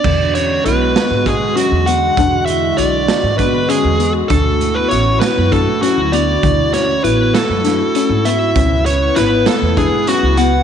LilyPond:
<<
  \new Staff \with { instrumentName = "Lead electric guitar" } { \time 7/8 \key e \mixolydian \tempo 4 = 99 d''8 cis''8 b'4 gis'8 fis'8 fis''8~ | fis''8 e''8 d''4 b'8 gis'8. r16 | a'8. b'16 cis''8 b'8 a'8 fis'8 d''8~ | d''8 cis''8 b'8 a'4. e''8~ |
e''8 cis''8 b'8 a'8 gis'8 fis'8 fis''8 | }
  \new Staff \with { instrumentName = "Analog synth pad" } { \time 7/8 \key e \mixolydian <d gis fis'>2.~ <d gis fis'>8~ | <d gis fis'>2.~ <d gis fis'>8 | <e' fis'>2.~ <e' fis'>8~ | <e' fis'>2.~ <e' fis'>8 |
<b e' b'>2.~ <b e' b'>8 | }
  \new Staff \with { instrumentName = "Synth arpeggio sound" } { \time 7/8 \key e \mixolydian d4 e'4 d'8 cis'8 b8 | d'4 e'4 d'8 cis'8 b8 | d'4 e'4 d'8 cis'8 b8 | d4 e'4 d'8 cis'8 b8 |
cis'4 e'4 d'8 cis'8 b8 | }
  \new Staff \with { instrumentName = "Vibraphone" } { \time 7/8 \key e \mixolydian d'8 cis'8 b4 gis8 fis8 fis'8~ | fis'8 e'8 d'4 b8 gis8. r16 | a8. b16 cis'8 b8 a8 fis8 d'8~ | d'8 cis'8 b8 a4. e'8~ |
e'8 cis'8 b8 a8 gis8 fis8 fis'8 | }
  \new Staff \with { instrumentName = "Upright bass" } { \clef bass \time 7/8 \key e \mixolydian e,4 b,,8 r16 gis,8 r8 e,8. | e,4 b,,8 r16 gis,8 r8 e,8. | d,4 a,,8 r16 fis,8 r8 d,8. | d,4 a,,8 r16 fis,8 r8 gis,8. |
cis,4 gis,,8 r16 e,8 r8 cis,8. | }
  \new DrumStaff \with { instrumentName = "Drums" } \drummode { \time 7/8 <cymc bd>8 hh8 hh8 <hh sn>8 <hh bd>8 hh8 hh8 | <hh bd>8 hh8 hh8 <hh sn>8 <hh bd>8 hh8 hh8 | <hh bd>8 hh8 hh8 <hh sn>8 <hh bd>8 hh8 hh8 | <hh bd>8 <hh sn>8 hh8 <hh sn>8 <hh sn>8 hh8 hh8 |
<hh bd>8 hh8 <hh sn>8 <hh sn>8 <hh bd>8 hh8 hh8 | }
>>